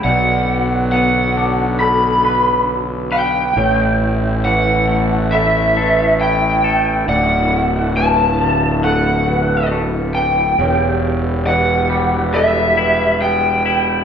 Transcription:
Already playing: B3
0.04 B1 B2 D3 F#3 D4 D5 F#5
0.92 B3 B4 F#5
1.37 D4
1.80 A4 B5
2.25 B4
3.12 B4 G5
3.56 A1 A2 B2 E3 A3 E4 C#5
4.45 E3 B4 F#5
4.88 A3
5.32 E4 A4 E5
5.77 A4 B4
6.21 E4 G5
6.64 A4
7.07 D1 D2 D3 F#3 A3 D5 F#5
7.96 A2 B4 A5
8.40 D3
8.83 A3 B3 A4 F#5
9.28 B4
9.72 A3
10.15 G5
10.57 E1 E2 E3 G3 G4 C#5
11.46 E3 B4 F#5
11.90 G3
12.34 B3 A4 E5
12.77 E4 B4
13.21 B3 G5
13.66 E4

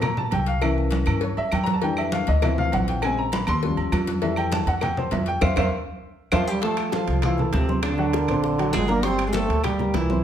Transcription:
Already playing: A#2
0.02 A#5, cowbell, high conga, low conga, low agogo, claves
0.17 A5, high conga, low conga
0.31 C2 G5, cowbell, high conga, low agogo
0.46 F5, cowbell, high conga
0.61 E3 A#3 C#4 E5, cowbell, high conga, low agogo, claves
0.78 high conga
0.91 cowbell, high conga, low agogo
1.06 G2 E3 A#3 C#4, cowbell, high conga, low agogo, claves
1.21 C#5, cowbell, high conga
1.37 G2 E5, high conga, low agogo
1.52 F2 G5, cowbell, high conga, low agogo, claves
1.63 A#5, cowbell, high conga
1.74 A5
1.82 E3 G3 A3 D4 G5, cowbell, high conga, low agogo
1.97 E5, high conga, low agogo, claves
2.12 F5, cowbell, high conga
2.27 D2 D#5, cowbell, high conga, low agogo
2.42 E3 F3 C4 E5, cowbell, high conga, low conga, low agogo, claves
2.58 F5, high conga, low conga
2.72 A#1 F#5, cowbell, high conga, low agogo
2.88 G5, cowbell, high conga
3.02 C#3 G#3 C4 G#5, cowbell, high conga, low agogo, claves
3.18 A#5, high conga
3.32 B5, cowbell, high conga, low agogo
3.47 D#2 C6, cowbell, high conga, low agogo, claves
3.63 F3 G3 C#4, cowbell, high conga
3.77 D#2, high conga, low agogo
3.92 F2, cowbell, high conga, low timbale, low agogo, claves
4.07 cowbell, high conga
4.21 E3 G3 A3 E5, cowbell, high conga, low agogo
4.36 G5, high conga, low agogo, claves
4.52 A5, cowbell, high conga
4.67 F2 F#5, cowbell, high conga, low agogo
4.81 G5, cowbell, high conga, low conga, low agogo, claves
4.97 C5, high conga, low conga
5.11 F2 E5, cowbell, high conga, low timbale, low agogo
5.26 G5, cowbell, high conga
5.41 F2 C5 E5 F5, cowbell, high conga, high timbale, claves
5.56 F2 C5 E5 F5, cowbell, high conga, high timbale, claves
6.32 F2 F3 F4 C5 E5 F5, cowbell, high conga, high timbale, claves
6.48 G3 G4
6.61 F3 A3 F4 A4 F5, high bongo, high conga, high timbale
6.77 high bongo, high conga, high timbale, claves
6.92 F3 A3 F4 A4 A5, high bongo, high conga, low timbale
7.08 C2, high conga, high timbale
7.22 E3 F3 E4 F4 F5, high bongo, high conga, low conga, high timbale, claves
7.38 A3 A4 A5, high bongo, high conga, low conga
7.53 D2 C3 C4, high bongo, low bongo, high conga, high timbale, low timbale
7.69 C4 C5 C6, high bongo, high conga
7.83 D3 D4, high bongo, high timbale, claves
7.98 F#3 F#4 F#5, high bongo, high conga
8.13 A#3 A#4 A#5, high bongo, high conga, high timbale, low timbale
8.28 A#1 C4 C5 C6, high conga, high timbale, claves
8.44 high bongo, high conga
8.58 F#3 F#4 F#5, high bongo, high conga, high timbale
8.73 G1 G#3 G#4, high bongo, low bongo, high conga, high timbale, low timbale, claves
8.88 A#3 D4 A#4 D5 D6, high bongo, high conga
9.03 G3 C4 G4 C5 G5, high bongo, high conga, high timbale
9.18 high bongo, high conga, high timbale, claves
9.27 G#3 G#4
9.33 A#2 A3 A4 C5 G5, high bongo, high conga, low timbale
9.48 D2, high conga, high timbale
9.64 G3 G4 G5, high bongo, high conga, low conga, high timbale, claves
9.79 A#3 A#4 A#5, high bongo, high conga, low conga
9.94 C2 E3 E4, high bongo, low bongo, high conga, high timbale, low timbale
10.10 C4 C5 C6, high bongo, high conga

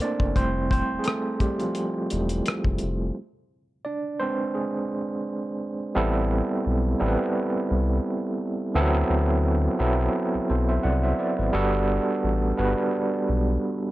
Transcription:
Already playing: A3 A#3 C4 D4 E4 A4 A#4 C5
0.00 D4 D5, closed hi-hat
0.20 F#1, kick
0.36 F1 G3 A3 C4 E4 C5, kick, closed hi-hat
0.71 C4 C5, kick, closed hi-hat
0.93 E1
0.99 G#4
1.04 A3 A4, cross-stick, closed hi-hat
1.40 G3 G4, kick, closed hi-hat
1.60 F3 F4, closed hi-hat
1.75 closed hi-hat
2.10 E1 G3 A3 E4, closed hi-hat
2.29 closed hi-hat
2.46 cross-stick, closed hi-hat
2.65 F1, kick
2.78 closed hi-hat
2.83 F1
3.85 D4 D5
4.20 G#3 C4 D4 B4 C5
4.55 G#3 G#4
5.95 A1 G3 B3 C4 E4 A4
6.66 B1
6.99 A1 G3 B3 C4 E4 A4
7.07 B4
7.71 C2
8.74 D2 E3 B3 C4 E4 A4
8.81 F#3
9.10 D2
9.79 B1 F#3 B3 C4 E4 A4
10.35 B1
10.50 B1 A4 C5
10.69 C5 E5
10.83 C2 D5 F#5
11.03 C5 E5
11.19 B4 D5
11.38 G#1 B4
11.53 G1 G3 B3 D4 F#4 A4
12.24 A1
12.57 G1 G3 B3 D4 F#4 B4
13.29 B1

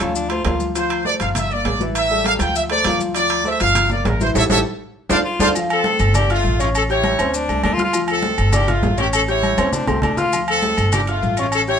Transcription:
Already playing: A4
0.00 D2 F3 C#4 F4 F5, high conga, high timbale, maracas
0.15 D4, high conga, maracas
0.30 A3 F4 A4 C5, high conga, high timbale, maracas
0.45 D2 F3 F4 F5, high conga, high timbale, low timbale, maracas
0.60 high conga, maracas
0.75 F3 F4 C5 F5, high conga, high timbale, maracas
0.90 high conga, high timbale, maracas
1.05 A3 A4 C5 D5, high conga, low timbale, maracas
1.20 G1 F3 F4 F5, high conga, high timbale, maracas
1.35 E5, high conga, low conga, high timbale, maracas
1.50 A#3 A#4 D5, high conga, maracas
1.65 A1, high conga, high timbale, low timbale, maracas
1.80 E3 E4 E5, high conga, maracas
1.95 E5, high conga, high timbale, maracas
2.10 G3 G4 A4, high conga, maracas
2.24 F5, high conga, high timbale, low timbale, maracas
2.39 D2 F3 F4 F5 G5, high conga, high timbale, maracas
2.55 E5, high conga, maracas
2.69 A3 A4 C5 D5, high conga, high timbale, maracas
2.84 D2 F3 F4 F5, high conga, high timbale, low timbale, maracas
2.99 high conga, maracas
3.15 F3 F4 D5 F5, high conga, high timbale, maracas
3.30 high conga, high timbale, maracas
3.44 A3 A4 C5 E5, high conga, low timbale, maracas
3.59 G1 F3 F4 F5, high conga, high timbale, maracas
3.75 high conga, low conga, high timbale, maracas
3.90 A#3 A#4 D5, high conga, low conga, maracas
4.05 A1 A#4, high conga, high timbale, low timbale, maracas
4.20 E3 E4 C5 E5, high conga, maracas
4.35 A1 E4 G4 A4 C#5 E5, high conga, high timbale, maracas
4.50 A1 E4 G4 A4 C#5 E5, high conga, high timbale, maracas
5.09 D2 D4 F4 A4 C5 D5 F5, high conga, high timbale, maracas
5.25 F4
5.39 D2 D4 F4 A4 C5 D5 F5, high conga, high timbale, maracas
5.55 F3 F4 F5, low agogo, maracas
5.70 C4 A4, high conga, low agogo, maracas
5.84 A3 A4 A5, high conga, maracas
5.99 G1, high conga, low agogo, maracas
6.14 A#3 D4 G4 D5 D6, high conga, low conga, low agogo, maracas
6.29 A3 F4 F5 F6, high conga, low agogo, maracas
6.44 A1, high conga, maracas
6.59 A3 C#4 F4 C#5 C#6, low agogo, maracas
6.74 C#4 A4, high conga, low agogo, maracas
6.89 E4 G4 C#5 G5 G6, high conga, maracas
7.04 high conga, low agogo, maracas
7.18 D2 C4 C#4 C5 C6, high conga, low agogo, maracas
7.34 D4, high conga, maracas
7.49 C2 A3 A4 A5, high conga, low agogo, maracas
7.63 D2 D4, high conga, low timbale, low agogo, maracas
7.73 F4
7.78 F4 F5 F6, high conga, maracas
7.84 F4
7.93 F3 F4 F5, high conga, low agogo, maracas
8.08 C4 A4, high conga, low agogo, maracas
8.23 A3 A4 A5, high conga, maracas
8.38 G1, high conga, low agogo, maracas
8.53 A#3 D4 G4 D5 D6, high conga, low conga, low agogo, maracas
8.68 A3 F4 F5 F6, high conga, low conga, low agogo, maracas
8.83 A1, high conga, low timbale, maracas
8.98 A#3 C#4 G4 C#5 C#6, low agogo, maracas
9.13 C#4 A4, low agogo, maracas
9.28 E4 G4 C#5 G5 G6, high conga, maracas
9.43 high conga, low agogo, maracas
9.58 D2 C4 C#4 C5 C6, high conga, low agogo, maracas
9.72 D4, low conga, maracas
9.87 C2 A3 C4 A4 A5, low conga, low agogo, maracas
10.02 D2 D4, low conga, low agogo, maracas
10.17 F4 F5 F6, low conga, maracas
10.32 F3 F4 F5, high conga, low agogo, maracas
10.47 C4 A4, high conga, low agogo, maracas
10.62 A3 A4 A5, high conga, maracas
10.78 G1, low agogo, maracas
10.92 A#3 D4 G4 D5 D6, high conga, low conga, low agogo, maracas
11.07 A3 F4 F5 F6, high conga, low agogo, maracas
11.22 A1, high conga, maracas
11.37 A3 C#4 F4 C#5 C#6, low agogo, maracas
11.52 C#4 A4, high conga, low agogo, maracas
11.67 E4 G4 C#5 G5 G6, high conga, maracas

